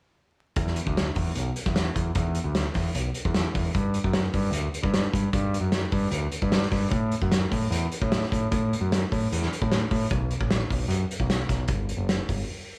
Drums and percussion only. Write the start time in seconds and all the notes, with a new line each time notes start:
0.56 kick, closed hi-hat
0.67 snare
0.76 closed hi-hat
0.87 kick
0.97 snare, closed hi-hat
1.16 kick, open hi-hat
1.35 closed hi-hat
1.56 closed hi-hat
1.66 kick, snare
1.76 snare, closed hi-hat
1.96 kick, closed hi-hat
2.15 kick, closed hi-hat
2.35 closed hi-hat
2.55 snare, closed hi-hat
2.74 kick, snare, open hi-hat
2.95 closed hi-hat
3.14 closed hi-hat
3.25 kick
3.34 snare, closed hi-hat
3.55 kick, open hi-hat
3.75 kick, closed hi-hat
3.94 closed hi-hat
4.04 kick
4.13 snare, closed hi-hat
4.34 kick, open hi-hat
4.53 closed hi-hat
4.74 closed hi-hat
4.83 kick
4.94 snare, closed hi-hat
5.13 kick, closed hi-hat
5.33 kick, closed hi-hat
5.54 closed hi-hat
5.72 snare, closed hi-hat
5.92 kick, open hi-hat
6.12 closed hi-hat
6.32 closed hi-hat
6.42 kick
6.52 snare, closed hi-hat
6.62 snare
6.72 kick, snare, open hi-hat
6.91 kick, closed hi-hat
7.12 closed hi-hat
7.22 kick
7.32 snare, closed hi-hat
7.52 kick, open hi-hat
7.72 closed hi-hat
7.92 closed hi-hat
8.02 kick
8.12 snare, closed hi-hat
8.23 snare
8.32 kick, closed hi-hat
8.52 kick, closed hi-hat
8.73 closed hi-hat
8.92 snare, closed hi-hat
9.12 kick, open hi-hat
9.33 closed hi-hat
9.42 snare
9.53 closed hi-hat
9.62 kick
9.72 snare, closed hi-hat
9.91 kick, open hi-hat
10.10 kick, closed hi-hat
10.31 closed hi-hat
10.41 kick
10.50 snare, closed hi-hat
10.70 kick, open hi-hat
10.90 closed hi-hat
11.11 closed hi-hat
11.20 kick
11.30 snare, closed hi-hat
11.49 kick, snare, closed hi-hat
11.68 kick, closed hi-hat
11.89 closed hi-hat
12.09 snare, closed hi-hat
12.29 kick, open hi-hat